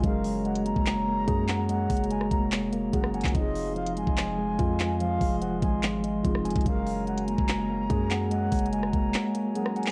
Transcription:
Already playing: glass harmonica G#4
0.01 808-style bass F#1, grand piano F#3 C#4 G#4, tine electric piano G#3, glass harmonica F#4 C#5 A#5, flute F5, kick, closed hi-hat
0.06 grand piano A#4
0.24 open hi-hat
0.45 tine electric piano G#3, flute F#5, closed hi-hat
0.55 closed hi-hat
0.66 tine electric piano A#3, flute A#5, closed hi-hat
0.76 808-style bass F#1, kick
0.86 clap, closed hi-hat
1.07 tine electric piano A#3
1.28 808-style bass F#2, tine electric piano G#4, kick, closed hi-hat
1.49 tine electric piano F#5, clap, closed hi-hat
1.69 tine electric piano G#3, flute F#5, closed hi-hat
1.90 808-style bass F#1, kick, closed hi-hat, open hi-hat
1.97 closed hi-hat
2.04 closed hi-hat
2.10 tine electric piano G#3, flute G#5, closed hi-hat
2.21 cross-stick
2.31 808-style bass F1, tine electric piano A#3, flute A#5, kick, closed hi-hat
2.52 clap, closed hi-hat
2.72 tine electric piano A#3, closed hi-hat
2.92 808-style bass F#1, grand piano F#3 C#4 G#4 A#4, tine electric piano G#4, flute F#5, kick, closed hi-hat
3.04 cross-stick
3.14 tine electric piano F#5, flute G#5, closed hi-hat
3.21 808-style bass F#1, kick, clap, closed hi-hat
3.28 closed hi-hat
3.32 808-style bass F1, grand piano F3 C4 D#4, tine electric piano F3, glass harmonica G#4 D#5 F5 C6, flute D#5, kick, closed hi-hat
3.38 grand piano G#4
3.55 open hi-hat
3.76 tine electric piano F3, flute F5, closed hi-hat
3.87 closed hi-hat
3.97 tine electric piano G#3, flute G#5, closed hi-hat
4.07 808-style bass F1, kick
4.17 clap, closed hi-hat
4.38 tine electric piano G#3
4.59 808-style bass F2, tine electric piano F4, kick, closed hi-hat
4.80 tine electric piano G#5, clap, closed hi-hat
5.00 tine electric piano F3, flute F5, closed hi-hat
5.21 808-style bass F1, kick, open hi-hat
5.41 tine electric piano F3, flute F#5, closed hi-hat
5.62 808-style bass G#1, tine electric piano G#3, flute G#5, kick, closed hi-hat
5.83 clap, closed hi-hat
6.04 tine electric piano G#3, closed hi-hat
6.23 808-style bass F1, grand piano F3 C4 D#4 G#4, tine electric piano F4, kick, closed hi-hat
6.35 cross-stick
6.45 tine electric piano G#5, closed hi-hat
6.50 closed hi-hat
6.55 808-style bass F1, kick, closed hi-hat
6.61 grand piano F#3, closed hi-hat
6.65 808-style bass F#1, tine electric piano G#3, grand piano C#4 G#4 A#4, glass harmonica F#4 C#5 G#5 A#5, flute F5, kick, closed hi-hat
6.86 open hi-hat
7.07 tine electric piano G#3, flute F#5, closed hi-hat
7.18 closed hi-hat
7.28 tine electric piano A#3, flute A#5, closed hi-hat
7.38 808-style bass F#1, kick
7.49 clap, closed hi-hat
7.69 tine electric piano A#3
7.90 808-style bass F#2, tine electric piano G#4, kick, closed hi-hat
8.11 tine electric piano F#5, clap, closed hi-hat
8.31 tine electric piano G#3, flute F#5, closed hi-hat
8.52 808-style bass F#1, kick, closed hi-hat, open hi-hat
8.59 closed hi-hat
8.66 closed hi-hat
8.72 tine electric piano G#3, flute G#5, closed hi-hat
8.83 cross-stick
8.93 808-style bass F1, tine electric piano A#3, flute A#5, kick, closed hi-hat
9.14 clap, closed hi-hat
9.34 tine electric piano A#3, closed hi-hat
9.54 grand piano F#3 C#4 G#4 A#4, tine electric piano G#4, flute F#5, closed hi-hat
9.66 cross-stick
9.76 tine electric piano F#5, flute G#5, closed hi-hat
9.83 clap, closed hi-hat

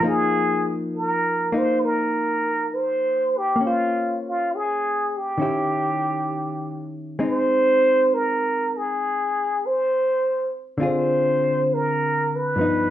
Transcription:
0.00 hollow-body jazz guitar F3 A#3 D#4
0.07 muted trumpet G#4
0.96 muted trumpet A#4
1.52 hollow-body jazz guitar A#3 D#4
1.57 muted trumpet C5
1.85 muted trumpet A#4
2.74 muted trumpet C5
3.37 muted trumpet G4
3.56 hollow-body jazz guitar A#3
3.61 hollow-body jazz guitar C#4
3.65 muted trumpet F4, hollow-body jazz guitar C5
4.28 muted trumpet F4
4.55 muted trumpet G#4
5.17 muted trumpet G4
5.38 hollow-body jazz guitar D#3 C#4 E4
5.42 hollow-body jazz guitar G4
7.19 hollow-body jazz guitar G#3 C4 D#4
7.23 muted trumpet C5
8.14 muted trumpet A#4
8.77 muted trumpet G#4
9.66 muted trumpet C5
10.78 hollow-body jazz guitar D3 C4 F4
10.83 hollow-body jazz guitar G#4, muted trumpet C5
11.74 muted trumpet A#4
12.36 muted trumpet B4
12.56 hollow-body jazz guitar G2 F3 B3
12.61 hollow-body jazz guitar D#4

